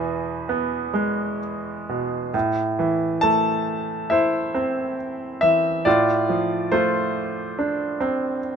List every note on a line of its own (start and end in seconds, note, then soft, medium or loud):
0.00 2.30 E2 soft
0.00 0.90 B2 soft
0.00 1.37 E3 soft
0.00 1.38 B4 medium
0.00 1.38 G#5 medium
0.49 2.30 B3 soft
0.94 2.30 G#3 soft
1.89 2.33 B2 soft
2.34 5.82 A2 soft
2.79 4.51 E3 soft
3.21 4.95 A3 soft
3.21 4.13 A5 medium
4.10 5.82 E4 soft
4.10 5.82 C5 soft
4.10 5.38 E5 soft
4.54 5.82 C4 soft
5.41 5.84 E3 soft
5.41 5.86 E5 medium
5.85 8.56 A2 soft
5.85 6.72 F4 soft
5.85 6.68 D5 medium
6.29 7.97 F3 soft
6.72 8.38 A3 soft
6.72 8.56 F4 soft
6.72 8.56 C5 medium
7.59 8.56 D4 soft
8.01 8.56 C4 soft